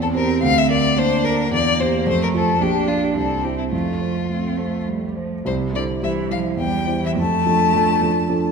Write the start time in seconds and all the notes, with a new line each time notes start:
Already playing: E2 C4
0.02 A4
0.15 G4 A#4 C5
0.43 D2 F5
0.58 E5
0.70 A#4 D5
0.97 A#3 D4 C5
1.24 A#4
1.51 E2 A#3 D5
1.79 G4 C5
2.06 F2 A3 C5
2.23 A#4
2.34 F4 A4 C5
2.60 A#1 D4 G4
2.88 D4 F4 D5
3.04 G4
3.14 C2 C4 A4
3.44 E4 G4 C5
3.58 E4
3.72 F2 A3 F4
4.01 C5
4.29 A3 C4
4.57 A3 C5
4.87 G3 A3
5.16 F3 C5
5.45 C2 C3 C5
5.73 D3 G3 E4 C5 D5
6.02 E3 G3 E4 C5 E5
6.29 F3 G3 E4 C5 F5
6.57 E2 G3 G5
6.86 G3 E4 C5
7.02 E3 E5
7.16 F2 A3 A5
7.45 F3 D4 A4
7.73 F3 D4 A4
8.01 F3 D4 A4
8.29 F3 D4 A4